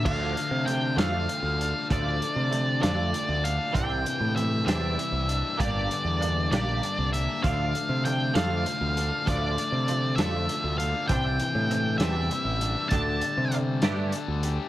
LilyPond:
<<
  \new Staff \with { instrumentName = "Lead electric guitar" } { \time 6/8 \key d \minor \tempo 4. = 65 f''4 g''8 f''4. | d''4. d''4 f''8 | g''4 e''8 e''4. | d''4. d''4 e''8 |
f''4 g''8 f''4. | d''4. e''4 f''8 | g''4. e''4. | a''4 r2 | }
  \new Staff \with { instrumentName = "Clean electric guitar" } { \time 6/8 \key d \minor <f a d'>8 a8 <f a>8 <f a d'>8 <f a>8 r8 | <f a d'>8 <f a>8 <f a>8 <f a d'>8 <f a>8 r8 | <e c' d'>8 <e c'>8 <e c'>8 <e c' d'>8 <e c'>8 r8 | <bes d' g'>8 <bes d'>8 <bes d'>8 <bes d' g'>8 <bes d'>8 r8 |
<f a d'>8 <f a>8 <f a>8 <f a d'>8 <f a>8 r8 | <f a d'>8 <f a>8 <f a>8 <f a d'>8 <f a>8 r8 | <e c' d'>8 <e c'>8 <e c'>8 <e c' d'>8 <e c'>8 r8 | <a d' g'>8 <a d'>8 <a d'>8 <a d' g'>8 <a d'>8 r8 | }
  \new Staff \with { instrumentName = "Distorted electric guitar" } { \time 6/8 \key d \minor d8 a8 d8 a8 f'8 d'8 | d8 a8 d8 a8 f'8 d'8 | c8 e8 e8 g8 e'8 d'8 | g,8 d8 d8 g8 d'8 bes8 |
d8 a8 d8 a8 f'8 d'8 | d8 a8 d8 a8 f'8 d'8 | c8 e8 e8 g8 e'8 d'8 | d8 g8 g8 d'8 a'8 g'8 | }
  \new Staff \with { instrumentName = "Picked electric bass" } { \clef bass \time 6/8 \key d \minor d,8 r16 c8. f,8 r16 d,8 r16 | d,8 r16 c8. f,8 r16 d,8 r16 | c,8 r16 a,8. e,8 r16 c,8 r16 | g,,8 r16 e,8. bes,,8 r16 c,8 r16 |
d,8 r16 c8. f,8 r16 d,8 r16 | d,8 r16 c8. f,8 r16 d,8 r16 | c,8 r16 a,8. e,8 r16 a,,8 r16 | d,8 r16 c8. g,8 r16 d,8 r16 | }
  \new DrumStaff \with { instrumentName = "Drums" } \drummode { \time 6/8 <cymc bd>8 hh8 hh8 <hh sn>8 hh8 hh8 | <hh bd>8 hh8 hh8 <hh sn>8 hh8 hh8 | <hh bd>8 hh8 hh8 <hh sn>8 hh8 hh8 | <hh bd>8 hh8 hh8 <hh sn>8 hh8 hh8 |
<hh bd>8 hh8 hh8 <hh sn>8 hh8 hh8 | <hh bd>8 hh8 hh8 <hh sn>8 hh8 hh8 | <hh bd>8 hh8 hh8 <hh sn>8 hh8 hh8 | <hh bd>8 hh8 hh8 <hh sn>8 hh8 hh8 | }
>>